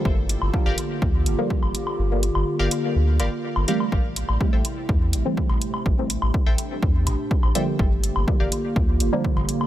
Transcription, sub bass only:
\new Staff \with { instrumentName = "Sub bass" } { \clef bass \time 4/4 \key g \dorian \tempo 4 = 124 g,,8. g,,16 r16 g,,16 r8 d,8 g,,16 r8 g,,16 r8 | g,,8. g,,16 r16 g,,16 r8 d,8 g,,16 r8 g,,16 r8 | a,,8. a,,16 r16 a,,16 r8 e,8 a,,16 r8 a,,16 r8 | a,,8. a,,16 r16 a,,16 r8 e,8 a,,16 r8 a,,16 r8 |
g,,8. g,,16 r16 g,,16 r8 d,8 g,,16 r8 g,,16 r8 | }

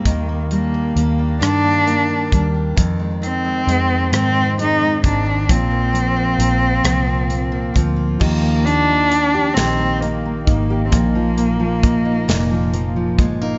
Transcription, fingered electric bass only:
\new Staff \with { instrumentName = "Fingered electric bass" } { \clef bass \time 6/8 \key ees \major \tempo 4. = 44 ees,4 ees,8 g,4 ees,8 | f,4 f,8 aes,4 aes,,8 | bes,,4 bes,,8 c,4 d,8 | ees,4. bes,,4 aes,,8 |
bes,,4. f,,4 g,,8 | }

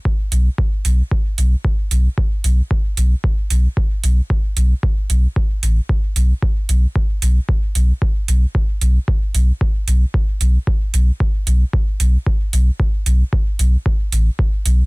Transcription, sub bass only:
\new Staff \with { instrumentName = "Sub bass" } { \clef bass \time 4/4 \key a \major \tempo 4 = 113 r8 b,,8 r8 b,,8 r8 b,,8 r8 b,,8 | r8 b,,8 r8 b,,8 r8 b,,8 r8 b,,8 | r8 b,,8 r8 b,,8 r8 a,,8 r8 b,,8 | r8 b,,8 r8 b,,8 r8 b,,8 r8 b,,8 |
r8 b,,8 r8 b,,8 r8 b,,8 r8 b,,8 | r8 b,,8 r8 b,,8 r8 b,,8 r8 b,,8 | r8 b,,8 r8 b,,8 r8 a,,8 r8 b,,8 | }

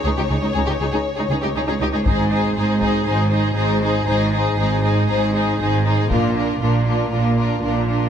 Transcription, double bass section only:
\new Staff \with { instrumentName = "Double bass section" } { \clef bass \time 4/4 \key aes \lydian \tempo 4 = 119 des,16 r16 des,16 r16 des,16 r16 des,16 r8. des,16 r16 des,16 r16 des,16 r16 | aes,,4 aes,,4 aes,,4 aes,,4 | aes,,4 aes,,4 aes,,4 aes,,4 | bes,,4 bes,,4 bes,,4 bes,,4 | }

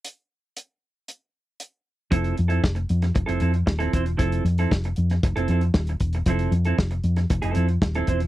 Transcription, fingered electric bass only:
\new Staff \with { instrumentName = "Fingered electric bass" } { \clef bass \time 4/4 \key f \major \tempo 4 = 116 r1 | f,,8 f,8 f,,8 f,8 f,,16 f,,16 f,8 ees,,8 e,,8 | f,,8 f,8 f,,8 f,8 f,,16 f,,16 f,8 ees,,8 e,,8 | f,,8 f,8 f,,8 f,8 f,,16 f,,16 f,8 ees,,8 e,,8 | }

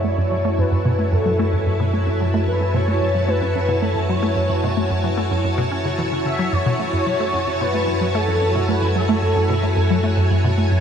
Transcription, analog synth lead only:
\new Staff \with { instrumentName = "Analog synth lead" } { \time 4/4 \key fis \minor \tempo 4 = 111 cis''4 b'4 a'4. r8 | r8 b'8 cis''4 b'4 a'8 cis''8~ | cis''4. r2 e''8 | cis''2 b'4 a'4 |
b'8 a'2. r8 | }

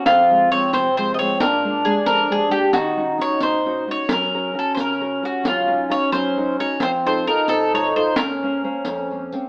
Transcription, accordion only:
\new Staff \with { instrumentName = "Accordion" } { \time 6/8 \key ees \dorian \tempo 4. = 89 c'2. | d'2. | ees'2~ ees'8 r8 | des'2. |
des'2. | c'4 ees'2 | des'2~ des'8 c'8 | }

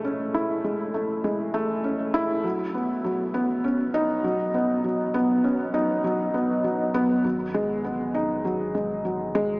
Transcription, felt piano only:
\new Staff \with { instrumentName = "Felt piano" } { \time 4/4 \key gis \phrygian \tempo 4 = 100 cis'8 e'8 gis8 a8 gis8 a8 cis'8 e'8 | fis8 b8 fis8 b8 cis'8 dis'8 fis8 b8 | fis8 b8 cis'8 dis'8 fis8 b8 fis8 b8 | fis8 gis8 b8 dis'8 fis8 gis8 fis8 gis8 | }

